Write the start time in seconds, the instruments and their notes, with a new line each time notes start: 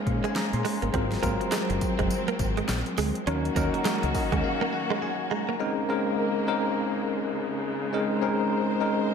Already playing: tine electric piano G#3 C#4 D#4 C5 D#5 F5, string section G#3 A#3 C#4
0.06 fingered electric bass A#2, muted clean electric guitar stroke, kick, closed hi-hat
0.24 clean electric guitar G#3, tine electric piano G#5, closed hi-hat
0.35 tine electric piano A#5, muted clean electric guitar stroke, snare, clap, closed hi-hat
0.53 fingered electric bass A#2, tine electric piano C6, closed hi-hat
0.65 clean electric guitar G#3, open hi-hat
0.82 fingered electric bass G1, clean electric guitar A#3, closed hi-hat
0.94 fingered electric bass G#1, tine electric piano F#3 C4 F4 A#4, string section F#3 C4, clean electric guitar C4, kick, closed hi-hat
1.12 snare, closed hi-hat
1.23 fingered electric bass G#1, tine electric piano F#3 C4 F4 A#4, clean electric guitar A#3, kick, closed hi-hat, tambourine
1.41 muted clean electric guitar stroke, closed hi-hat
1.52 clean electric guitar G#3, snare, clap, closed hi-hat, tambourine
1.70 fingered electric bass F#1, muted clean electric guitar stroke, closed hi-hat
1.81 kick, closed hi-hat, tambourine
1.99 fingered electric bass F#1, clean electric guitar G#3, kick, closed hi-hat
2.10 closed hi-hat, tambourine
2.28 clean electric guitar A#3, closed hi-hat
2.39 fingered electric bass G#1, muted clean electric guitar stroke, kick, closed hi-hat, tambourine
2.57 clean electric guitar G#3, closed hi-hat
2.69 fingered electric bass A#1, snare, clap, closed hi-hat, tambourine
2.86 closed hi-hat
2.98 fingered electric bass D2, clean electric guitar G#3, open hi-hat, tambourine
3.15 closed hi-hat
3.27 fingered electric bass D#2, string section D#3 A#3 C#4 F#4, tine electric piano F#3 C#4 D#4 A#4, clean electric guitar C#4, closed hi-hat
3.45 closed hi-hat
3.56 fingered electric bass D#2, tine electric piano F#3 C#4 D#4 A#4, clean electric guitar A#3, kick, closed hi-hat, tambourine
3.74 muted clean electric guitar stroke, closed hi-hat
3.85 clean electric guitar G#3, snare, clap, closed hi-hat, tambourine
4.03 fingered electric bass C#2, muted clean electric guitar stroke, closed hi-hat
4.15 tine electric piano D#5, kick, open hi-hat, tambourine
4.32 fingered electric bass D#2, clean electric guitar G#3, kick, closed hi-hat
4.44 tine electric piano F5
4.61 clean electric guitar A#3
4.73 tine electric piano F#5, muted clean electric guitar stroke
4.90 clean electric guitar G#3
5.02 tine electric piano G#5, muted clean electric guitar stroke
5.31 clean electric guitar G#3, tine electric piano A#5
5.49 clean electric guitar A#3
5.59 string section C#3 G#3 A#3, tine electric piano G#3 C4 C#4 D#4 A#4
5.89 tine electric piano G#3 C4 C#4 D#4 A#4
6.47 tine electric piano G#3 C4 C#4 D#4 A#4
7.92 tine electric piano G#3 C4 C#4 D#4 A#4, string section C5
8.22 tine electric piano G#3 C4 C#4 D#4 A#4
8.80 tine electric piano G#3 C4 C#4 D#4 A#4